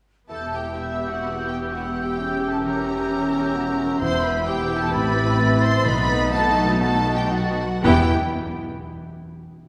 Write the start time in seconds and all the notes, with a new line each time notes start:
0.29 E1 E2 B3 E4 G4 A4 E5 A5 G6
0.46 B2
0.53 G4 G5
0.62 G4
0.77 B2 E4 E5
0.93 B3
1.09 B2 F#4 F#5
1.25 E2
1.40 B3
1.48 G4 G5
1.56 G4
1.71 B2 F#4 F#5
1.88 B3
2.03 B2 G4 G5
2.17 E2 C#4 G4
2.35 E3
2.49 G4 A4 A5
2.64 E3 A#4 A#5
2.80 C#4
2.96 E3
3.11 E2
3.27 C#4
3.41 G4
3.55 E3 F#4
3.72 C#4
3.87 E3
4.00 E1 E2 B3 E4 C5 E5 C6 G6
4.16 B2
4.24 B4 B5
4.32 G4
4.47 B2 G4 G5
4.62 B3
4.77 B2 A4 A5
4.92 A1 A2 C4 B4 B5 A6
5.08 E3
5.23 A4
5.39 E3 E4
5.54 C4
5.62 C5 C6
5.70 E3
5.85 B1 B2 A3 B3 D#4 B4 D#5 B5
6.01 F#3
6.16 A4
6.32 F#3 F#4 A4 A5
6.49 B3
6.65 F#3
6.81 B2 F#4 A4 A5
6.98 B3
7.14 G4 A4 G5
7.31 F#3 D#4 F#4 F#5
7.49 B3
7.67 F#3
7.81 E1 E2 E3 B3 E4 G4 B4 B5
7.85 E3 B4 E5 G5